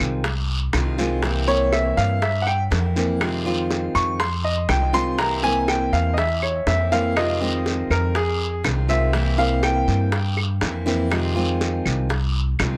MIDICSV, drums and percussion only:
0, 0, Header, 1, 2, 480
1, 0, Start_track
1, 0, Key_signature, -4, "minor"
1, 0, Tempo, 494234
1, 1196, Time_signature, 4, 2, 24, 8
1, 12404, End_track
2, 0, Start_track
2, 0, Title_t, "Drums"
2, 0, Note_on_c, 9, 75, 66
2, 93, Note_off_c, 9, 75, 0
2, 235, Note_on_c, 9, 60, 72
2, 236, Note_on_c, 9, 74, 66
2, 332, Note_off_c, 9, 60, 0
2, 333, Note_off_c, 9, 74, 0
2, 710, Note_on_c, 9, 60, 66
2, 710, Note_on_c, 9, 61, 85
2, 713, Note_on_c, 9, 73, 72
2, 718, Note_on_c, 9, 75, 65
2, 808, Note_off_c, 9, 60, 0
2, 808, Note_off_c, 9, 61, 0
2, 810, Note_off_c, 9, 73, 0
2, 815, Note_off_c, 9, 75, 0
2, 958, Note_on_c, 9, 73, 70
2, 1055, Note_off_c, 9, 73, 0
2, 1190, Note_on_c, 9, 60, 66
2, 1200, Note_on_c, 9, 74, 73
2, 1287, Note_off_c, 9, 60, 0
2, 1297, Note_off_c, 9, 74, 0
2, 1434, Note_on_c, 9, 60, 37
2, 1531, Note_off_c, 9, 60, 0
2, 1676, Note_on_c, 9, 60, 57
2, 1676, Note_on_c, 9, 73, 69
2, 1676, Note_on_c, 9, 75, 65
2, 1773, Note_off_c, 9, 60, 0
2, 1773, Note_off_c, 9, 73, 0
2, 1773, Note_off_c, 9, 75, 0
2, 1919, Note_on_c, 9, 73, 65
2, 2016, Note_off_c, 9, 73, 0
2, 2156, Note_on_c, 9, 74, 67
2, 2159, Note_on_c, 9, 60, 69
2, 2254, Note_off_c, 9, 74, 0
2, 2256, Note_off_c, 9, 60, 0
2, 2397, Note_on_c, 9, 75, 63
2, 2400, Note_on_c, 9, 60, 32
2, 2494, Note_off_c, 9, 75, 0
2, 2497, Note_off_c, 9, 60, 0
2, 2637, Note_on_c, 9, 73, 67
2, 2640, Note_on_c, 9, 60, 67
2, 2640, Note_on_c, 9, 61, 75
2, 2734, Note_off_c, 9, 73, 0
2, 2737, Note_off_c, 9, 60, 0
2, 2737, Note_off_c, 9, 61, 0
2, 2879, Note_on_c, 9, 60, 33
2, 2879, Note_on_c, 9, 73, 73
2, 2976, Note_off_c, 9, 60, 0
2, 2976, Note_off_c, 9, 73, 0
2, 3117, Note_on_c, 9, 74, 75
2, 3118, Note_on_c, 9, 60, 71
2, 3118, Note_on_c, 9, 75, 68
2, 3214, Note_off_c, 9, 74, 0
2, 3215, Note_off_c, 9, 60, 0
2, 3215, Note_off_c, 9, 75, 0
2, 3598, Note_on_c, 9, 73, 65
2, 3600, Note_on_c, 9, 60, 59
2, 3695, Note_off_c, 9, 73, 0
2, 3697, Note_off_c, 9, 60, 0
2, 3835, Note_on_c, 9, 75, 63
2, 3842, Note_on_c, 9, 73, 62
2, 3933, Note_off_c, 9, 75, 0
2, 3939, Note_off_c, 9, 73, 0
2, 4076, Note_on_c, 9, 60, 65
2, 4082, Note_on_c, 9, 74, 67
2, 4174, Note_off_c, 9, 60, 0
2, 4179, Note_off_c, 9, 74, 0
2, 4553, Note_on_c, 9, 60, 69
2, 4553, Note_on_c, 9, 61, 78
2, 4560, Note_on_c, 9, 75, 70
2, 4561, Note_on_c, 9, 73, 72
2, 4650, Note_off_c, 9, 60, 0
2, 4650, Note_off_c, 9, 61, 0
2, 4657, Note_off_c, 9, 75, 0
2, 4658, Note_off_c, 9, 73, 0
2, 4798, Note_on_c, 9, 73, 67
2, 4895, Note_off_c, 9, 73, 0
2, 5036, Note_on_c, 9, 60, 71
2, 5041, Note_on_c, 9, 74, 75
2, 5133, Note_off_c, 9, 60, 0
2, 5138, Note_off_c, 9, 74, 0
2, 5275, Note_on_c, 9, 60, 33
2, 5372, Note_off_c, 9, 60, 0
2, 5517, Note_on_c, 9, 60, 62
2, 5518, Note_on_c, 9, 75, 70
2, 5521, Note_on_c, 9, 73, 72
2, 5614, Note_off_c, 9, 60, 0
2, 5615, Note_off_c, 9, 75, 0
2, 5619, Note_off_c, 9, 73, 0
2, 5762, Note_on_c, 9, 73, 66
2, 5859, Note_off_c, 9, 73, 0
2, 6001, Note_on_c, 9, 60, 67
2, 6006, Note_on_c, 9, 74, 72
2, 6098, Note_off_c, 9, 60, 0
2, 6103, Note_off_c, 9, 74, 0
2, 6239, Note_on_c, 9, 75, 63
2, 6242, Note_on_c, 9, 60, 35
2, 6336, Note_off_c, 9, 75, 0
2, 6339, Note_off_c, 9, 60, 0
2, 6476, Note_on_c, 9, 60, 64
2, 6476, Note_on_c, 9, 61, 80
2, 6481, Note_on_c, 9, 73, 68
2, 6573, Note_off_c, 9, 60, 0
2, 6573, Note_off_c, 9, 61, 0
2, 6578, Note_off_c, 9, 73, 0
2, 6721, Note_on_c, 9, 60, 37
2, 6722, Note_on_c, 9, 73, 72
2, 6818, Note_off_c, 9, 60, 0
2, 6819, Note_off_c, 9, 73, 0
2, 6958, Note_on_c, 9, 75, 73
2, 6961, Note_on_c, 9, 60, 68
2, 6967, Note_on_c, 9, 74, 75
2, 7055, Note_off_c, 9, 75, 0
2, 7058, Note_off_c, 9, 60, 0
2, 7064, Note_off_c, 9, 74, 0
2, 7439, Note_on_c, 9, 60, 57
2, 7446, Note_on_c, 9, 73, 69
2, 7536, Note_off_c, 9, 60, 0
2, 7543, Note_off_c, 9, 73, 0
2, 7680, Note_on_c, 9, 75, 68
2, 7685, Note_on_c, 9, 73, 66
2, 7777, Note_off_c, 9, 75, 0
2, 7782, Note_off_c, 9, 73, 0
2, 7916, Note_on_c, 9, 60, 67
2, 7925, Note_on_c, 9, 74, 69
2, 8013, Note_off_c, 9, 60, 0
2, 8022, Note_off_c, 9, 74, 0
2, 8396, Note_on_c, 9, 60, 63
2, 8396, Note_on_c, 9, 61, 78
2, 8397, Note_on_c, 9, 73, 68
2, 8400, Note_on_c, 9, 75, 71
2, 8493, Note_off_c, 9, 60, 0
2, 8493, Note_off_c, 9, 61, 0
2, 8494, Note_off_c, 9, 73, 0
2, 8497, Note_off_c, 9, 75, 0
2, 8633, Note_on_c, 9, 73, 70
2, 8730, Note_off_c, 9, 73, 0
2, 8871, Note_on_c, 9, 60, 67
2, 8875, Note_on_c, 9, 74, 73
2, 8968, Note_off_c, 9, 60, 0
2, 8972, Note_off_c, 9, 74, 0
2, 9111, Note_on_c, 9, 60, 34
2, 9208, Note_off_c, 9, 60, 0
2, 9352, Note_on_c, 9, 60, 62
2, 9354, Note_on_c, 9, 73, 69
2, 9355, Note_on_c, 9, 75, 70
2, 9449, Note_off_c, 9, 60, 0
2, 9451, Note_off_c, 9, 73, 0
2, 9452, Note_off_c, 9, 75, 0
2, 9594, Note_on_c, 9, 73, 69
2, 9691, Note_off_c, 9, 73, 0
2, 9830, Note_on_c, 9, 60, 69
2, 9835, Note_on_c, 9, 74, 62
2, 9928, Note_off_c, 9, 60, 0
2, 9932, Note_off_c, 9, 74, 0
2, 10069, Note_on_c, 9, 60, 34
2, 10076, Note_on_c, 9, 75, 66
2, 10167, Note_off_c, 9, 60, 0
2, 10173, Note_off_c, 9, 75, 0
2, 10307, Note_on_c, 9, 60, 66
2, 10307, Note_on_c, 9, 61, 82
2, 10316, Note_on_c, 9, 73, 73
2, 10405, Note_off_c, 9, 60, 0
2, 10405, Note_off_c, 9, 61, 0
2, 10413, Note_off_c, 9, 73, 0
2, 10552, Note_on_c, 9, 60, 37
2, 10556, Note_on_c, 9, 73, 73
2, 10649, Note_off_c, 9, 60, 0
2, 10653, Note_off_c, 9, 73, 0
2, 10795, Note_on_c, 9, 60, 66
2, 10797, Note_on_c, 9, 74, 77
2, 10797, Note_on_c, 9, 75, 69
2, 10892, Note_off_c, 9, 60, 0
2, 10894, Note_off_c, 9, 74, 0
2, 10894, Note_off_c, 9, 75, 0
2, 11275, Note_on_c, 9, 60, 61
2, 11277, Note_on_c, 9, 73, 74
2, 11372, Note_off_c, 9, 60, 0
2, 11374, Note_off_c, 9, 73, 0
2, 11514, Note_on_c, 9, 75, 65
2, 11517, Note_on_c, 9, 73, 66
2, 11611, Note_off_c, 9, 75, 0
2, 11614, Note_off_c, 9, 73, 0
2, 11753, Note_on_c, 9, 60, 64
2, 11758, Note_on_c, 9, 74, 67
2, 11850, Note_off_c, 9, 60, 0
2, 11855, Note_off_c, 9, 74, 0
2, 12227, Note_on_c, 9, 75, 71
2, 12233, Note_on_c, 9, 73, 73
2, 12234, Note_on_c, 9, 60, 62
2, 12234, Note_on_c, 9, 61, 78
2, 12324, Note_off_c, 9, 75, 0
2, 12330, Note_off_c, 9, 73, 0
2, 12331, Note_off_c, 9, 60, 0
2, 12331, Note_off_c, 9, 61, 0
2, 12404, End_track
0, 0, End_of_file